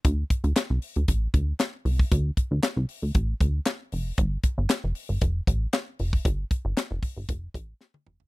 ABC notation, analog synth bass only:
X:1
M:4/4
L:1/16
Q:1/4=116
K:Dm
V:1 name="Analog synth bass" clef=bass
D,,2 z D,, z C,, z D,, A,,,2 D,,2 z2 C,,2 | D,,2 z D,, z C,, z D,, A,,,2 D,,2 z2 F,,,2 | G,,,2 z G,,, z F,,, z G,,, F,,,2 A,,,2 z2 F,,,2 | G,,,2 z G,,, z F,,, z G,,, F,,,2 A,,,2 z2 F,,,2 |]